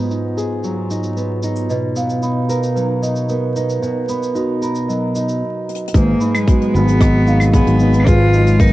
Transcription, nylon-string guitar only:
0.00 1.69 G#2 medium
0.00 0.64 F#3 medium
0.00 1.16 B3 medium
0.00 0.10 D#4 medium
0.00 0.36 G#4 medium
0.11 0.90 D#4 medium
0.37 1.75 G#4 medium
0.64 2.75 F#3 medium
0.91 1.43 D#4 medium
1.17 1.95 B3 medium
1.43 2.22 D#4 medium
1.70 3.81 B2 medium
1.96 3.29 B3 medium
2.23 3.02 D#4 medium
2.49 4.61 A#4 medium
2.76 4.88 F#3 medium
3.02 3.56 D#4 medium
3.29 4.08 B3 medium
3.56 4.34 D#4 medium
3.82 5.42 B2 medium
4.09 5.92 B3 medium
4.35 5.15 D#4 medium
4.62 5.41 A#4 medium
4.88 5.92 F#3 medium
5.15 5.92 D#4 medium
5.94 8.06 G#2 medium
5.94 6.74 G#4 medium
6.21 7.26 D#4 medium
6.48 8.59 B3 medium
6.75 7.53 G#4 medium
7.01 8.73 F#3 medium
7.27 7.80 D#4 medium
7.54 8.06 G#4 medium
7.80 8.33 D#4 medium
8.07 8.73 G#2 medium
8.07 8.73 G#4 medium
8.34 8.73 D#4 medium
8.60 8.73 B3 medium

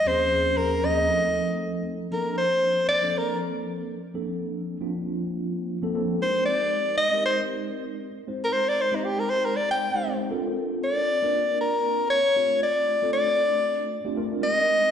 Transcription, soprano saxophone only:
0.08 0.59 C5 loud
0.57 0.87 A#4 medium
0.85 1.61 D#5 loud
2.13 2.36 A#4 medium
2.38 2.85 C5 medium
2.89 3.19 D5 loud
3.18 3.41 A#4 medium
6.22 6.45 C5 medium
6.46 6.94 D5 medium
6.98 7.22 D#5 loud
7.26 7.41 C5 medium
8.45 8.55 A#4 medium
8.53 8.70 C5 medium
8.68 8.83 D5 loud
8.81 8.97 C5 medium
8.95 9.07 D#4 soft
9.05 9.21 G4 medium
9.20 9.32 A#4 medium
9.30 9.47 C5 medium
9.46 9.58 A#4 medium
9.56 9.70 D5 medium
9.71 10.18 G5 medium
10.84 11.57 D5 medium
11.61 12.09 A#4 medium
12.10 12.59 C#5 loud
12.63 13.11 D5 medium
13.13 13.87 D5 loud
14.43 14.91 D#5 loud

